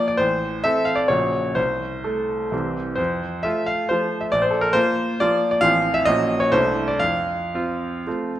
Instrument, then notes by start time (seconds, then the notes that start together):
grand piano
Already playing: F3 A#3 F4
0.08 D5
0.17 A1 C5
0.64 C4 A4 E5
0.85 F5
0.95 D5
1.08 A#1 C#3 A#3 F#4 C#5
1.55 C2 C5
2.04 A3 A4
2.52 C2 E3 C4 G4
2.96 F2 C5
3.43 A3 F4 E5
3.66 F5
3.89 F3 A3 F4 C5
4.21 E5
4.32 A#1 D5
4.42 C5
4.51 A4
4.61 A#4
4.73 A#3 F4 C5
5.20 F3 A#3 F4 D5
5.51 D5
5.61 A1 F3 C4 F4 F5
5.94 E5
6.05 A#1 A#3 C#4 F#4 D#5
6.40 C#5
6.52 C2 A3 D4 E4 C5
6.88 D5
6.99 F2 F5
7.55 C4 F4
8.07 A3 C4 F4